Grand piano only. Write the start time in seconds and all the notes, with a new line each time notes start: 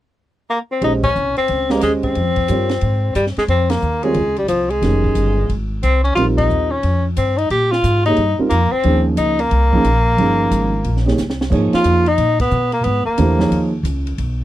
0.82 G#3 C#4 G4 C5 D#5
1.70 G#3 C#4 G4 C5 D#5
2.49 G3 C4 F4 A#4 C#5
4.03 G3 C4 F4 A#4 C#5
4.81 D#3 G#3 C#4 G4 A#4
6.17 G3 C4 D#4 F4 A#4
8.06 A#3 D#4 G4 G#4 C#5
8.39 G3 C4 D#4 F4 A#4
8.84 F3 A#3 C#4 D#4 G#4
9.72 F3 A#3 C#4 D#4 G#4
10.18 F3 A#3 C#4 D#4 G#4
11.05 A#3 D#4 G4 G#4 C#5
11.50 F3 A#3 D#4 G#4 C#5
13.18 E3 A3 D4 G4 C5
13.39 F3 A#3 D#4 G#4 C#5